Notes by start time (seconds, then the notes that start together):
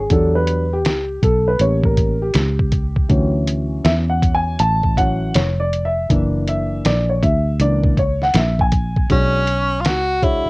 Already playing: G#4
0.10 E2 F#3 G3 D4 A4, kick, closed hi-hat
0.35 B4
0.47 closed hi-hat
0.73 G4
0.85 C#2, snare, closed hi-hat
1.22 B1 A4, kick, closed hi-hat
1.48 B4
1.59 A1 G3 A#3 C#4 C#5, closed hi-hat
1.84 A#4, kick
1.97 kick, closed hi-hat
2.22 G4
2.34 C#2, snare, closed hi-hat
2.59 kick
2.72 kick, closed hi-hat
2.96 kick
3.09 D2 E3 F#3 C#4, kick, closed hi-hat
3.47 closed hi-hat
3.84 E2 E5, snare, closed hi-hat
4.10 F#5
4.22 kick, closed hi-hat
4.35 G#5
4.59 A1 A5, closed hi-hat
4.83 kick
4.97 E3 F#3 C#4 F#5, kick, closed hi-hat
5.34 F1 C#5, snare, closed hi-hat
5.60 D5
5.73 closed hi-hat
5.85 E5
6.09 F#1 E3 A#3 D4, kick, closed hi-hat
6.47 E5, closed hi-hat
6.85 A#1 D5, snare, closed hi-hat
7.09 C#5
7.23 D2 E5, kick, closed hi-hat
7.60 C#2 E3 A#3 D4 D5, closed hi-hat
7.84 kick
7.97 C#5, kick, closed hi-hat
8.22 F#5, snare
8.34 A#1 E5, snare, closed hi-hat
8.59 G#5, kick
8.72 kick, closed hi-hat
8.97 kick
9.10 B1 G#3 C#4 D4 F#4, kick, closed hi-hat
9.47 closed hi-hat
9.81 C#2 F4
9.85 F#4, snare, closed hi-hat
10.22 G#3 D4 E4 F#4 C#5, kick, closed hi-hat
10.46 muted fingered electric bass stroke